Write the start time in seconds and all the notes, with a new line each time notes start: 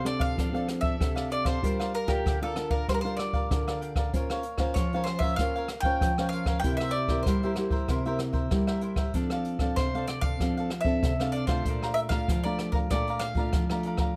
Already playing: C3
0.04 C4 D4 A4 D5, muted cavaquinho stroke, cross-stick, closed hi-hat
0.19 A4 D5 F5, kick
0.36 F3 D4 A4 D5, kick, cross-stick, closed hi-hat
0.40 F5
0.53 C4 D4 A4 D5 F5, closed hi-hat
0.68 muted cavaquinho stroke, cross-stick, closed hi-hat
0.81 A4 D5 E5, kick, closed hi-hat
0.99 C3 C4 D4 A4, kick, cross-stick, closed hi-hat
1.15 A4 D5 F5, cross-stick, closed hi-hat
1.30 D4 A4 D5 F5, closed hi-hat
1.45 A4 C5 D5 F5, kick, cross-stick, closed hi-hat
1.63 G3 D4 F4 G4 A#4 D5 F5, kick, closed hi-hat
1.79 A#4 D5 F5, cross-stick
1.94 A#4, closed hi-hat
2.07 D4 F4 G4 A#4 D5 F5, kick, cross-stick, closed hi-hat
2.25 D3 G4 A#4 D5 F5, kick, cross-stick, closed hi-hat
2.42 D4 F4 A4 A#4 D5 F5, closed hi-hat
2.56 D4 F4 A#4, muted cavaquinho stroke, cross-stick, closed hi-hat
2.70 A#4 D5 F5, kick
2.88 G3 G4 A#4 C5 D5 F5, kick, cross-stick, closed hi-hat
2.94 A#4
3.01 D4 F4 C5 F5
3.05 A#4 D5, closed hi-hat
3.17 D5, muted cavaquinho stroke, cross-stick, closed hi-hat
3.33 A#4 D5 F5, kick, closed hi-hat
3.50 D3 D4 F4 A#4, kick, cross-stick, closed hi-hat
3.67 A#4 D5 F5, cross-stick
3.81 G4 A#4 D5 F5, closed hi-hat
3.96 A#4 D5 F5, kick, cross-stick
4.13 A#3 C#4 F4 A#4 C5 C#5 F5, kick, closed hi-hat
4.30 A#4 C#5 F5, cross-stick, closed hi-hat
4.43 closed hi-hat
4.58 C#4 F4 C5 C#5 F5, kick, cross-stick, closed hi-hat
4.62 A#4
4.74 F3 F4 A#4 C#5, kick, cross-stick, closed hi-hat
4.78 C#5 F5
4.93 C#4 F4 A#4 C5 C#5 F5, closed hi-hat
5.04 C5, cross-stick, closed hi-hat
5.09 muted cavaquinho stroke
5.19 C#4 F4 C5 E5 F5, kick
5.23 A#4 C#5
5.36 A#3 C#4 F4 C5 F5, kick, cross-stick, closed hi-hat
5.41 A#4 C#5 F5
5.55 A#4 C#5 F5, closed hi-hat
5.68 muted cavaquinho stroke, cross-stick, closed hi-hat
5.80 C#4 F5 G5, kick, closed hi-hat
5.85 F4 A#4 C5 C#5
6.01 F3, kick, cross-stick, closed hi-hat
6.18 C#4 F4 A#4 C5 C#5 F5, cross-stick, closed hi-hat
6.29 F4 F5, closed hi-hat
6.33 A#4 C#5 F5
6.46 A#4 C#5 F5, kick, cross-stick, closed hi-hat
6.60 C3 G5
6.64 A#3 E4 G4 A#4 C5 E5, kick, closed hi-hat
6.77 E5, cross-stick
6.82 A#4 C5
6.91 D5, closed hi-hat
7.08 A#3 E4 G4 A#4 C5 E5, kick, cross-stick, closed hi-hat
7.23 G3 C5, kick, cross-stick, closed hi-hat
7.27 E4 A#4 C5 E5
7.42 A#3 E4 G4 A#4 C5 E5, closed hi-hat
7.56 A#3 E4 G4, muted cavaquinho stroke, cross-stick, closed hi-hat
7.71 A#4 C5 E5, kick
7.88 C3 E4 A#4 C5 E5, kick, cross-stick, closed hi-hat
8.05 A#3 E4 G4 A#4 C5 E5, closed hi-hat
8.19 muted cavaquinho stroke, cross-stick, closed hi-hat
8.33 A#4 C5 E5, kick, closed hi-hat
8.51 G3 A#3 E4 G4, kick, cross-stick, closed hi-hat
8.67 A#4 C5 E5, cross-stick
8.81 E4 A#4 C5 E5, closed hi-hat
8.96 A#4 C5 E5, kick, cross-stick
9.14 F3 C4 D4 A4 D5 F5, kick, closed hi-hat
9.30 A4 D5 F5, cross-stick, closed hi-hat
9.45 closed hi-hat
9.59 C4 D4 A4 D5 F5, kick, cross-stick, closed hi-hat
9.76 C3 D4 A4 C5 D5 F5, kick, cross-stick, closed hi-hat
9.94 C4 D4 A4 D5 F5, closed hi-hat
10.08 D5, muted cavaquinho stroke, cross-stick, closed hi-hat
10.21 A4 D5 F5, kick
10.40 F3 C4 D4 A4 D5 F5, kick, cross-stick, closed hi-hat
10.57 A4 D5 F5, closed hi-hat
10.70 muted cavaquinho stroke, cross-stick, closed hi-hat
10.81 C4 E5
10.85 D4 A4 D5, kick, closed hi-hat
11.03 C3, kick, cross-stick, closed hi-hat
11.20 C4 D4 A4 D5 F5, cross-stick, closed hi-hat
11.32 D4 A4 D5, closed hi-hat
11.37 D5 F5
11.47 A3 D4 F4 A4 C5 D5 F5, kick, cross-stick, closed hi-hat
11.65 A#2 A4 D5, kick, closed hi-hat
11.70 F5 A#5
11.83 D5 F5 A#5, cross-stick
11.94 E5, closed hi-hat
12.09 A3 D4 F4 F5 A#5, kick, cross-stick, closed hi-hat
12.14 D5
12.28 F3 A4 D5 F5 A#5, kick, cross-stick, closed hi-hat
12.44 A3 D4 F4 D5 F5 A#5, closed hi-hat
12.48 D5
12.59 muted cavaquinho stroke, cross-stick, closed hi-hat
12.72 A#4 D5 F5 A#5, kick
12.90 A#2 A3 D4 F4 A4 D5 F5 A#5, kick, cross-stick, closed hi-hat
13.07 D5 F5 A#5, closed hi-hat
13.19 F5, muted cavaquinho stroke, cross-stick, closed hi-hat
13.34 A3 D4 F4 A#5, kick, closed hi-hat
13.39 D5 F5
13.53 F3, kick, cross-stick, closed hi-hat
13.70 A3 D4 F4 D5 F5 A#5, cross-stick
13.83 A4 D5, closed hi-hat
13.87 F5 A#5
13.97 F5 A#5, kick, cross-stick
14.02 D5